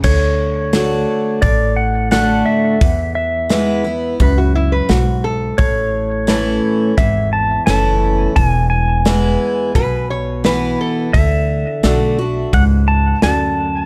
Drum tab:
CC |x-------|--------|--------|--------|
HH |--o-o-o-|o-o-o-o-|o-o-o-o-|o-o-o-o-|
SD |--o---o-|--o---o-|--o---o-|--o---o-|
BD |o---o---|o---o---|o---o---|o---o---|

CC |--------|
HH |o-o-o-o-|
SD |--o---o-|
BD |o---o---|